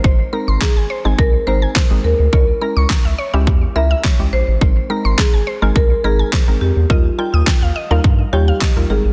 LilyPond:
<<
  \new Staff \with { instrumentName = "Synth pluck" } { \time 4/4 \key aes \major \tempo 4 = 105 c''16 r16 bes''16 c'''16 bes''16 aes''16 c''16 aes''16 r8 bes''16 aes''16 c''16 r8. | des''16 r16 bes''16 des'''16 bes''16 fes''16 des''16 fes''16 r8 bes''16 fes''16 des''16 r8. | c''16 r16 bes''16 c'''16 bes''16 aes''16 c''16 aes''16 r8 bes''16 aes''16 c''16 r8. | ees''16 r16 g''16 ees'''16 g''16 f''16 ees''16 f''16 r8 g''16 f''16 ees''16 r8. | }
  \new Staff \with { instrumentName = "Marimba" } { \time 4/4 \key aes \major c''4 aes'4 bes'8 c''4 bes'8 | bes'4 r4. fes''4 c''8~ | c''4 aes'4 bes'8 aes'4 g'8 | f'4 r4. g'4 aes'8 | }
  \new Staff \with { instrumentName = "Synth pluck" } { \time 4/4 \key aes \major <aes c' ees' bes'>16 r16 <aes c' ees' bes'>8. r8 <aes c' ees' aes'>8 r16 <aes c' ees' bes'>8 r16 <aes c' ees' aes'>8 r16 | <aes des' fes' bes'>16 r16 <aes des' fes' bes'>8. r8 <aes des' fes' g'>8 r16 <aes des' fes' bes'>8 r16 <aes des' fes' g'>8 r16 | <aes c' ees' bes'>16 r16 <aes c' ees' bes'>8. r8 <aes c' ees' bes'>8 r16 <aes c' ees' bes'>8 r16 <aes c' ees' bes'>8 r16 | <g ees' f' bes'>16 r16 <g ees' f' bes'>8. r8 <g ees' f' bes'>8 r16 <g ees' f' des''>8 r16 <g ees' f' bes'>16 <aes c' ees' bes'>8 | }
  \new Staff \with { instrumentName = "Analog synth bass" } { \clef bass \time 4/4 \key aes \major aes,,8 r16 aes,,16 r16 aes,,16 r16 aes,,16 c,8 aes,,8 r16 aes,,16 ees,16 d,16 | des,8 r16 des,16 r16 des,16 r16 des,16 fes,8 des,8 r16 des,16 bes,,16 a,,16 | aes,,8 r16 aes,,16 r16 aes,,16 r16 aes,,16 c,8 aes,,8 r16 aes,,16 f,16 fes,16 | ees,8 r16 ees,16 r16 ees,16 r16 ees,16 g,8 ees,8 r16 ees,16 aes,,16 a,,16 | }
  \new DrumStaff \with { instrumentName = "Drums" } \drummode { \time 4/4 bd4 <hc bd sn>4 bd4 <hc bd sn>4 | bd4 <hc bd sn>4 bd4 <hc bd sn>4 | bd4 <hc bd sn>4 bd4 <hc bd sn>4 | bd4 <hc bd sn>4 bd4 <hc bd sn>4 | }
>>